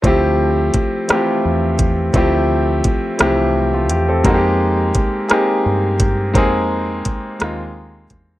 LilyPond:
<<
  \new Staff \with { instrumentName = "Grand piano" } { \time 6/8 \key d \minor \tempo 4. = 57 << { r2. | r2 r16 <a f'>16 g'16 <c' a'>16~ | <c' a'>16 r2 r8. | r2. | } \\ { <f a c' e' g'>4 r8 <e a c' e' f' g'>4 r8 | <f a c' e' g'>4 r8 <e f a c' e' g'>4 r8 | <aes bes c' ees' fis' g'>4 r8 <bes c' ees' g' aes'>4 r8 | <aes bes c' ees' aes'>4 r8 <aes bes c' ees' f'>4 r8 | } >> }
  \new Staff \with { instrumentName = "Fingered electric bass" } { \clef bass \time 6/8 \key d \minor d,4 r4 e,4 | d,4 r8 c,4 e,8 | f,4 r4 g,4 | f,4 r8 ees,4 e,8 | }
  \new DrumStaff \with { instrumentName = "Drums" } \drummode { \time 6/8 <hh bd>4 <hh bd>8 <hh ss>4 <hh bd>8 | <hh bd>4 <hh bd>8 <hh ss>4 hh8 | <hh bd>4 <hh bd>8 <hh ss>4 <hh bd>8 | <hh bd>4 <hh bd>8 <hh ss>4 <hh bd>8 | }
>>